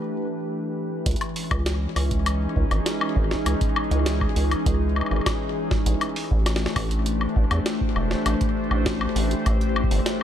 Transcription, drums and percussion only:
1.06 kick loud
1.06 closed hi-hat medium
1.11 closed hi-hat soft
1.16 closed hi-hat soft
1.21 closed hi-hat medium
1.21 high woodblock medium
1.36 open hi-hat medium
1.51 kick loud
1.51 closed hi-hat soft
1.51 high woodblock medium
1.66 snare loud
1.66 closed hi-hat medium
1.96 open hi-hat medium
1.96 high woodblock medium
2.11 kick loud
2.11 closed hi-hat medium
2.26 closed hi-hat medium
2.26 high woodblock medium
2.56 kick loud
2.71 closed hi-hat soft
2.71 high woodblock medium
2.86 snare loud
2.86 closed hi-hat medium
3.01 high woodblock medium
3.16 kick loud
3.31 snare medium
3.46 closed hi-hat medium
3.46 high woodblock medium
3.61 kick loud
3.61 closed hi-hat medium
3.76 high woodblock medium
3.91 closed hi-hat soft
4.06 snare loud
4.06 closed hi-hat medium
4.21 kick loud
4.21 high woodblock medium
4.36 open hi-hat medium
4.51 closed hi-hat medium
4.51 high woodblock medium
4.66 kick loud
4.66 closed hi-hat medium
4.96 high woodblock soft
5.01 high woodblock soft
5.06 high woodblock soft
5.11 high woodblock soft
5.16 high woodblock soft
5.21 high woodblock soft
5.26 kick loud
5.26 snare loud
5.26 closed hi-hat medium
5.26 high woodblock medium
5.71 kick loud
5.71 snare medium
5.86 closed hi-hat medium
6.01 closed hi-hat medium
6.01 high woodblock medium
6.16 open hi-hat medium
6.31 kick loud
6.46 snare loud
6.46 closed hi-hat medium
6.46 high woodblock medium
6.56 snare loud
6.66 snare medium
6.76 kick loud
6.76 open hi-hat medium
6.76 high woodblock medium
6.91 closed hi-hat medium
7.06 closed hi-hat medium
7.21 high woodblock soft
7.36 kick loud
7.51 closed hi-hat soft
7.51 high woodblock medium
7.66 snare loud
7.66 closed hi-hat medium
7.81 kick loud
7.96 high woodblock medium
8.11 snare medium
8.26 closed hi-hat medium
8.26 high woodblock medium
8.41 kick loud
8.41 closed hi-hat medium
8.71 high woodblock medium
8.86 kick loud
8.86 snare loud
9.01 high woodblock medium
9.16 open hi-hat medium
9.31 closed hi-hat medium
9.46 kick loud
9.46 closed hi-hat medium
9.46 high woodblock medium
9.61 closed hi-hat soft
9.76 high woodblock medium
9.84 kick loud
9.91 open hi-hat medium
10.06 snare loud
10.06 closed hi-hat medium

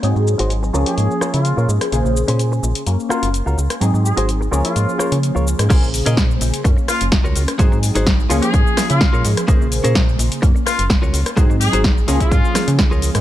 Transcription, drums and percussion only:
0.03 closed hi-hat soft
0.03 shaker soft
0.16 shaker soft
0.28 shaker medium
0.39 closed hi-hat medium
0.39 shaker soft
0.50 closed hi-hat soft
0.50 shaker soft
0.64 shaker soft
0.75 shaker medium
0.86 closed hi-hat medium
0.86 shaker soft
0.98 closed hi-hat soft
0.98 shaker soft
1.11 shaker soft
1.21 cross-stick medium
1.21 shaker medium
1.34 closed hi-hat medium
1.34 shaker soft
1.45 closed hi-hat soft
1.45 shaker soft
1.58 shaker soft
1.69 shaker medium
1.81 cross-stick medium
1.81 closed hi-hat medium
1.81 shaker soft
1.92 closed hi-hat medium
1.92 shaker soft
2.06 shaker soft
2.17 shaker medium
2.28 closed hi-hat medium
2.28 shaker soft
2.39 closed hi-hat soft
2.39 shaker soft
2.53 shaker soft
2.64 shaker medium
2.75 closed hi-hat medium
2.75 shaker soft
2.86 closed hi-hat medium
2.86 shaker soft
3.00 shaker soft
3.10 cross-stick medium
3.10 shaker medium
3.23 closed hi-hat medium
3.23 shaker soft
3.34 closed hi-hat soft
3.34 shaker soft
3.47 shaker soft
3.58 shaker medium
3.70 cross-stick medium
3.70 closed hi-hat medium
3.70 shaker soft
3.81 closed hi-hat medium
3.81 shaker soft
3.95 shaker soft
4.06 shaker medium
4.17 closed hi-hat medium
4.17 shaker soft
4.29 closed hi-hat soft
4.29 shaker soft
4.42 shaker soft
4.53 shaker medium
4.65 closed hi-hat medium
4.65 shaker soft
4.76 closed hi-hat soft
4.76 shaker soft
4.89 shaker soft
4.99 cross-stick medium
4.99 shaker medium
5.12 closed hi-hat medium
5.12 shaker soft
5.23 closed hi-hat soft
5.23 shaker soft
5.36 shaker soft
5.47 shaker medium
5.59 cross-stick medium
5.59 closed hi-hat medium
5.59 shaker soft
5.70 kick loud
5.70 closed hi-hat medium
5.70 crash loud
5.70 shaker soft
5.84 shaker soft
5.94 open hi-hat loud
5.94 shaker medium
6.06 closed hi-hat medium
6.06 shaker soft
6.17 kick loud
6.17 snare loud
6.17 closed hi-hat medium
6.17 shaker soft
6.31 shaker soft
6.41 open hi-hat loud
6.41 shaker medium
6.54 closed hi-hat medium
6.54 shaker soft
6.65 kick loud
6.65 closed hi-hat medium
6.65 shaker soft
6.78 shaker soft
6.88 cross-stick medium
6.88 open hi-hat loud
6.88 shaker medium
7.01 closed hi-hat medium
7.01 shaker soft
7.12 kick loud
7.12 snare loud
7.12 closed hi-hat medium
7.12 shaker soft
7.25 shaker soft
7.36 open hi-hat loud
7.36 shaker medium
7.48 cross-stick medium
7.48 closed hi-hat medium
7.48 shaker soft
7.59 kick loud
7.59 closed hi-hat medium
7.59 shaker soft
7.73 shaker soft
7.83 open hi-hat loud
7.83 shaker medium
7.95 closed hi-hat medium
7.95 shaker soft
8.07 kick loud
8.07 snare loud
8.07 closed hi-hat medium
8.07 shaker soft
8.20 shaker soft
8.30 open hi-hat loud
8.30 shaker medium
8.43 closed hi-hat medium
8.43 shaker soft
8.54 kick loud
8.54 closed hi-hat medium
8.54 shaker soft
8.67 shaker soft
8.77 cross-stick medium
8.77 snare medium
8.77 open hi-hat loud
8.77 shaker medium
8.90 closed hi-hat medium
8.90 shaker soft
9.01 kick loud
9.01 snare loud
9.01 closed hi-hat soft
9.01 shaker soft
9.14 shaker soft
9.25 open hi-hat loud
9.25 shaker medium
9.37 cross-stick medium
9.37 closed hi-hat medium
9.37 shaker soft
9.48 kick loud
9.48 closed hi-hat medium
9.48 shaker soft
9.62 shaker soft
9.72 open hi-hat loud
9.72 shaker medium
9.84 closed hi-hat medium
9.84 shaker soft
9.95 kick loud
9.95 snare loud
9.95 closed hi-hat soft
9.95 shaker soft
10.09 shaker soft
10.19 open hi-hat loud
10.19 shaker medium
10.32 closed hi-hat medium
10.32 shaker soft
10.43 kick loud
10.43 closed hi-hat medium
10.43 shaker soft
10.56 shaker soft
10.67 cross-stick medium
10.67 open hi-hat loud
10.67 shaker medium
10.79 closed hi-hat medium
10.79 shaker soft
10.90 kick loud
10.90 snare loud
10.90 closed hi-hat soft
10.90 shaker soft
11.03 shaker soft
11.14 open hi-hat loud
11.14 shaker medium
11.26 cross-stick medium
11.26 closed hi-hat medium
11.26 shaker soft
11.37 kick loud
11.37 closed hi-hat medium
11.37 shaker soft
11.50 shaker soft
11.61 open hi-hat loud
11.61 shaker medium
11.73 closed hi-hat medium
11.73 shaker soft
11.84 kick loud
11.84 snare loud
11.84 closed hi-hat soft
11.84 shaker soft
11.98 shaker soft
12.08 open hi-hat loud
12.08 shaker medium
12.20 kick medium
12.20 closed hi-hat medium
12.20 shaker soft
12.31 kick loud
12.31 closed hi-hat soft
12.31 shaker soft
12.45 shaker soft
12.55 cross-stick medium
12.55 snare medium
12.55 open hi-hat loud
12.55 shaker medium
12.68 closed hi-hat medium
12.68 shaker soft
12.79 kick loud
12.79 snare loud
12.79 closed hi-hat soft
12.79 shaker soft
12.92 shaker soft
13.02 open hi-hat loud
13.02 shaker medium
13.15 cross-stick medium
13.15 closed hi-hat medium
13.15 shaker soft

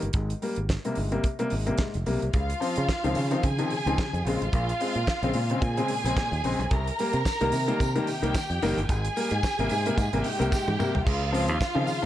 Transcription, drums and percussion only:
0.02 closed hi-hat soft
0.13 kick loud
0.13 closed hi-hat medium
0.30 closed hi-hat soft
0.42 open hi-hat medium
0.56 closed hi-hat soft
0.69 kick medium
0.69 snare loud
0.69 closed hi-hat medium
0.85 closed hi-hat soft
0.95 open hi-hat medium
1.12 closed hi-hat soft
1.24 kick loud
1.24 closed hi-hat medium
1.39 closed hi-hat soft
1.50 open hi-hat medium
1.67 closed hi-hat soft
1.78 kick loud
1.78 snare medium
1.78 closed hi-hat medium
1.94 closed hi-hat soft
2.06 open hi-hat medium
2.22 closed hi-hat soft
2.33 kick loud
2.33 closed hi-hat medium
2.50 closed hi-hat soft
2.62 open hi-hat medium
2.76 closed hi-hat soft
2.89 kick medium
2.89 snare loud
2.89 closed hi-hat medium
3.04 closed hi-hat soft
3.15 open hi-hat medium
3.31 closed hi-hat soft
3.43 kick medium
3.43 closed hi-hat medium
3.59 closed hi-hat soft
3.70 open hi-hat medium
3.87 closed hi-hat soft
3.98 kick loud
3.98 snare medium
3.98 closed hi-hat medium
4.14 closed hi-hat soft
4.26 open hi-hat medium
4.42 closed hi-hat soft
4.53 kick loud
4.53 closed hi-hat medium
4.69 closed hi-hat medium
4.80 open hi-hat medium
4.95 closed hi-hat soft
5.07 kick medium
5.07 snare loud
5.07 closed hi-hat medium
5.23 closed hi-hat soft
5.33 open hi-hat medium
5.50 closed hi-hat soft
5.62 kick loud
5.62 closed hi-hat medium
5.77 closed hi-hat soft
5.88 open hi-hat medium
6.05 closed hi-hat medium
6.17 kick loud
6.17 snare loud
6.17 closed hi-hat medium
6.33 closed hi-hat soft
6.44 open hi-hat medium
6.61 closed hi-hat soft
6.71 kick loud
6.71 closed hi-hat medium
6.88 closed hi-hat medium
6.99 open hi-hat medium
6.99 tambourine soft
7.13 closed hi-hat soft
7.25 kick loud
7.25 snare loud
7.25 closed hi-hat medium
7.25 tambourine medium
7.41 closed hi-hat soft
7.52 open hi-hat medium
7.52 tambourine medium
7.68 closed hi-hat soft
7.80 kick medium
7.80 closed hi-hat medium
7.80 tambourine medium
7.96 closed hi-hat soft
8.07 open hi-hat medium
8.07 tambourine medium
8.24 closed hi-hat medium
8.35 kick loud
8.35 snare medium
8.35 closed hi-hat medium
8.35 tambourine medium
8.51 closed hi-hat soft
8.62 open hi-hat medium
8.62 tambourine soft
8.78 closed hi-hat soft
8.89 kick loud
8.89 closed hi-hat medium
8.89 tambourine soft
9.05 closed hi-hat medium
9.16 open hi-hat medium
9.16 tambourine soft
9.31 closed hi-hat soft
9.43 kick medium
9.43 snare loud
9.43 closed hi-hat medium
9.43 tambourine medium
9.59 closed hi-hat soft
9.69 open hi-hat medium
9.69 tambourine medium
9.86 closed hi-hat soft
9.98 kick loud
9.98 closed hi-hat medium
9.98 tambourine medium
10.13 closed hi-hat soft
10.24 open hi-hat medium
10.24 tambourine soft
10.42 closed hi-hat soft
10.52 kick loud
10.52 snare medium
10.52 tambourine loud
10.68 high tom medium
10.80 mid tom medium
10.80 tambourine medium
10.95 floor tom medium
11.07 kick loud
11.07 crash loud
11.07 tambourine soft
11.34 open hi-hat medium
11.48 closed hi-hat soft
11.61 kick loud
11.61 snare loud
11.61 closed hi-hat medium
11.61 tambourine medium
11.87 open hi-hat medium
11.87 tambourine medium

